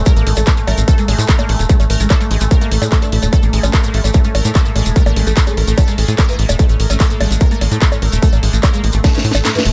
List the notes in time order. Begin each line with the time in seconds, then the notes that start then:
Already playing: A3
0.06 G#3 A#4, kick, closed hi-hat, shekere
0.16 A1 A2 A#3, closed hi-hat, shekere
0.27 A1 A2 G#3, open hi-hat
0.36 A1 A3, closed hi-hat, high bongo, shekere
0.46 A2 A3, kick, clap, closed hi-hat, shekere
0.57 A2 C#4, closed hi-hat, shekere
0.67 A1 A3 A#4, open hi-hat, high bongo
0.78 A1 A2, closed hi-hat, shekere
0.88 A2 A4, kick, closed hi-hat, shekere
0.98 G#3 A#3, closed hi-hat, shekere
1.08 A1 A2 G#3, open hi-hat, high bongo
1.18 A2 A3, closed hi-hat, shekere
1.29 A3 A#4, kick, clap, closed hi-hat, shekere
1.39 A2 A#3, high bongo, shekere
1.49 A1 A2 G#3, open hi-hat
1.59 E1 A2 A3, closed hi-hat, shekere
1.69 G#3 A3, kick, closed hi-hat, shekere
1.80 A1 A2 C#4, closed hi-hat, high bongo, shekere
1.90 A1 A2 A#4, open hi-hat
2.00 A1 G#3, closed hi-hat, shekere
2.10 A2 A4, kick, clap, closed hi-hat, high bongo, shekere
2.20 A3 A#3, closed hi-hat, shekere
2.31 A1 A2 G#3, open hi-hat
2.41 A1 A2 A3, closed hi-hat, shekere
2.51 A2 A#4, kick, closed hi-hat, high bongo, shekere
2.61 A3 A#3, closed hi-hat, shekere
2.71 A1 A2 A4, open hi-hat
2.82 A2 G#3, closed hi-hat, high bongo, shekere
2.92 A2 A4, kick, clap, closed hi-hat, shekere
3.02 A3 D4, shekere
3.12 A1 A2 E4, open hi-hat
3.22 E1 A2 A3, closed hi-hat, high bongo, shekere
3.33 A3 A4, kick, closed hi-hat, high bongo, shekere
3.43 A1 A2 A#3, closed hi-hat, shekere
3.53 A1 A2 G#3, open hi-hat
3.63 A1 C#4, closed hi-hat, high bongo, shekere
3.74 A2 A#4, kick, clap, closed hi-hat, shekere
3.84 A2 A3 A#3, closed hi-hat, shekere
3.94 A1 G#3 A3, open hi-hat
4.04 A1 A2 A3, closed hi-hat, high bongo, shekere
4.13 A2 A3, kick, closed hi-hat, shekere
4.24 A3 C#4, closed hi-hat, shekere
4.35 A1 A2 A#4, open hi-hat, high bongo
4.45 A2 A3, closed hi-hat, shekere
4.55 A3 A4, kick, clap, closed hi-hat, shekere
4.65 A2 A#3, shekere
4.76 A1 A2 G#3, open hi-hat, high bongo
4.86 E1 A2, closed hi-hat, shekere
4.96 A3 A#4, kick, closed hi-hat, shekere
5.06 A1 A2 A3 A#3, closed hi-hat, high bongo, shekere
5.16 A1 A2 G#3 A3, open hi-hat
5.27 A1 A3, closed hi-hat, shekere
5.37 A2, kick, clap, closed hi-hat, shekere
5.47 G#3 C#4, closed hi-hat, high bongo, shekere
5.57 A1 A2 A#4, open hi-hat
5.67 A1 A2 A3, closed hi-hat, shekere
5.78 A4, kick, closed hi-hat, high bongo, shekere
5.87 G#3 A#3, closed hi-hat, shekere
5.98 A1 A2 G#3, open hi-hat
6.08 A2, closed hi-hat, shekere
6.18 A2 A#4, kick, clap, closed hi-hat, high bongo, shekere
6.29 E3 A#3, shekere
6.39 A1 A2 G#3, open hi-hat
6.49 E1 A2 A3, closed hi-hat, high bongo, shekere
6.59 A3, kick, closed hi-hat, shekere
6.69 A1 A2 C#4, closed hi-hat, shekere
6.80 A1 A2 A#4, open hi-hat
6.90 A1 A3 C#4, closed hi-hat, high bongo, shekere
7.00 A2 A4, kick, clap, closed hi-hat, shekere
7.10 A2 A#3, closed hi-hat, shekere
7.20 A1 G#3 A3, open hi-hat, high bongo
7.31 A1 A2, closed hi-hat, shekere
7.41 A2 A#4, kick, closed hi-hat, shekere
7.51 A3 A#3, closed hi-hat, shekere
7.61 A1 A2 G#3, open hi-hat, high bongo
7.71 A2 A3, closed hi-hat, shekere
7.82 A3, kick, clap, closed hi-hat, shekere
7.92 A2 C#4, high bongo, shekere
8.02 A1 A2 A#4, open hi-hat
8.12 E1 A2 A3, closed hi-hat, shekere
8.22 A3 A4, kick, closed hi-hat, shekere
8.33 A1 A2 A#3, closed hi-hat, high bongo, shekere
8.43 A1 A2 G#3, open hi-hat
8.53 A1 A3, closed hi-hat, shekere
8.63 A2 A#4, kick, clap, closed hi-hat, high bongo, shekere
8.74 G#3 A#3, closed hi-hat, shekere
8.84 A1 A2 G#3, open hi-hat
8.92 A1 A2 A3, closed hi-hat, shekere
9.04 A2 A3, kick, snare, closed hi-hat, high bongo, shekere
9.14 E3 C#4, snare, closed hi-hat, shekere
9.25 A2 A3, open hi-hat
9.31 A1 A2 A4, snare, closed hi-hat, high bongo, shekere
9.45 A2 E4, snare, clap, closed hi-hat, shekere
9.55 E3 A#3, snare, closed hi-hat, shekere
9.65 E1 A2 A3, open hi-hat